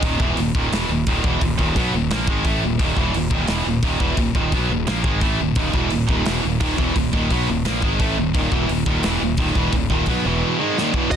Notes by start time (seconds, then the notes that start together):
0.03 D#1 D#2 A#2 D#3, kick, open hi-hat
0.20 E1 E2 B2 E3, kick
0.37 D#1 D#2 A#2, open hi-hat
0.55 D#1 D#2 A#2 D#3, kick
0.72 E1 E2 B2 E3, snare, open hi-hat
0.89 D#1 D#2 A#2
1.07 D#1 D#2 A#2 D#3, kick, open hi-hat
1.24 E1 E2 B2 E3, kick
1.41 D#1 D#2 A#2, kick, open hi-hat
1.58 D#1 D#2 A#2 D#3, kick
1.76 B1 B2 F#3 B3, kick, open hi-hat
1.94 D#1 D#2 A#2
2.10 A#1 A#2 F3 A#3, snare, open hi-hat
2.27 G#1 G#2 D#3 G#3, kick
2.45 A1 A2 E3 A3, kick, open hi-hat
2.62 D#1 D#2 A#2
2.79 D#1 D#2 A#2 D#3, kick, open hi-hat
2.97 E1 E2 B2 E3, kick
3.14 D#1 D#2 A#2, open hi-hat
3.30 D#1 D#2 A#2 D#3, kick
3.48 E1 E2 B2 E3, snare, open hi-hat
3.66 D#1 D#2 A#2
3.83 D#1 D#2 A#2 D#3, kick, open hi-hat
4.00 E1 E2 B2 E3, kick
4.17 D#1 D#2 A#2, kick, open hi-hat
4.35 D#1 D#2 A#2 D#3, kick
4.52 B1 B2 F#3 B3, kick, open hi-hat
4.70 D#1 D#2 A#2
4.87 A#1 A#2 F3 A#3, snare, open hi-hat
5.04 G#1 G#2 D#3 G#3, kick
5.21 A1 A2 E3 A3, kick, open hi-hat
5.40 D#1 D#2 A#2
5.55 D#1 D#2 A#2 D#3, kick, open hi-hat
5.74 E1 E2 B2 E3, kick
5.90 D#1 D#2 A#2, open hi-hat
6.09 D#1 D#2 A#2 D#3, kick
6.25 E1 E2 B2 E3, snare, open hi-hat
6.44 D#1 D#2 A#2
6.60 D#1 D#2 A#2 D#3, kick, open hi-hat
6.78 E1 E2 B2 E3, kick
6.96 D#1 D#2 A#2, kick, open hi-hat
7.13 D#1 D#2 A#2 D#3, kick
7.31 B1 B2 F#3 B3, kick, open hi-hat
7.48 D#1 D#2 A#2
7.65 A#1 A#2 F3 A#3, snare, open hi-hat
7.81 G#1 G#2 D#3 G#3, kick
7.99 A1 A2 E3 A3, kick, open hi-hat
8.16 D#1 D#2 A#2
8.34 D#1 D#2 A#2 D#3, kick, open hi-hat
8.51 E1 E2 B2 E3, kick
8.69 D#1 D#2 A#2, open hi-hat
8.86 D#1 D#2 A#2 D#3, kick
9.03 E1 E2 B2 E3, snare, open hi-hat
9.22 D#1 D#2 A#2
9.37 D#1 D#2 A#2 D#3, kick, open hi-hat
9.55 E1 E2 B2 E3, kick
9.73 D#1 D#2 A#2, kick, open hi-hat
9.90 D#1 D#2 A#2 D#3, kick
10.06 B1 B2 F#3 B3, kick, open hi-hat
10.24 E1 E2 B2 E3
10.59 G#2 D#3 G#3
10.77 D#2 A#2 D#3, snare
10.94 E2 B2 E3, kick
11.11 D#1 D#2 A#2 D#3 F#4 D#5, kick, crash